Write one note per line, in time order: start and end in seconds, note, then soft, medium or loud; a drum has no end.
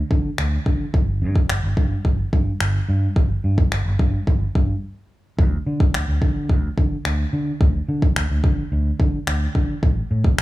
0.11 0.29 D3 loud
0.11 kick medium
0.38 0.57 D2 medium
0.38 finger snap loud
0.66 0.84 D3 loud
0.66 kick medium
0.94 1.23 G1 loud
0.94 kick loud
1.22 1.40 G2 medium
1.36 kick medium
1.50 1.59 G1 loud
1.50 finger snap loud
1.64 1.73 G1 loud
1.77 1.95 G2 loud
1.77 kick loud
2.05 2.23 G1 loud
2.05 kick loud
2.33 2.51 G2 loud
2.33 kick medium
2.60 2.79 G1 loud
2.60 finger snap loud
2.89 3.07 G2 loud
3.16 3.34 G1 loud
3.16 kick loud
3.44 3.62 G2 medium
3.58 kick loud
3.72 3.81 G1 loud
3.72 finger snap loud
3.86 3.95 G1 medium
3.99 4.18 G2 loud
3.99 kick loud
4.27 4.45 G1 loud
4.27 kick medium
4.55 4.73 G2 medium
4.55 kick medium
5.39 5.57 D2 loud
5.39 kick loud
5.66 5.84 D3 medium
5.80 kick loud
5.94 6.03 D2 loud
5.94 finger snap loud
6.08 6.17 D2 medium
6.22 6.51 D3 loud
6.22 kick medium
6.49 6.68 D2 loud
6.49 kick medium
6.78 6.96 D3 loud
6.78 kick loud
7.05 7.23 D2 loud
7.05 finger snap loud
7.33 7.51 D3 medium
7.61 7.79 D2 loud
7.61 kick loud
7.89 8.07 D3 loud
8.02 kick loud
8.16 8.25 D2 loud
8.16 finger snap loud
8.30 8.39 D2 medium
8.44 8.62 D3 loud
8.44 kick loud
8.72 8.90 D2 loud
9.00 9.18 D3 loud
9.00 kick medium
9.27 9.45 D2 loud
9.27 finger snap loud
9.55 9.73 D3 loud
9.55 kick medium
9.83 10.01 A1 loud
9.83 kick loud
10.11 10.29 A2 loud
10.24 kick loud
10.38 10.42 A1 loud
10.38 finger snap loud